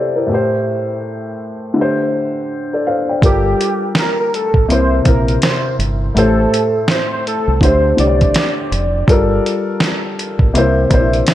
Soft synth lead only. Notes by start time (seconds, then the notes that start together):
3.25 G4
3.99 A#4
4.20 A#4
4.35 A4
4.72 C5
5.07 A#4
5.44 C5
6.17 A4
6.90 C5
7.13 C5
7.27 A4
7.63 C5
7.99 D5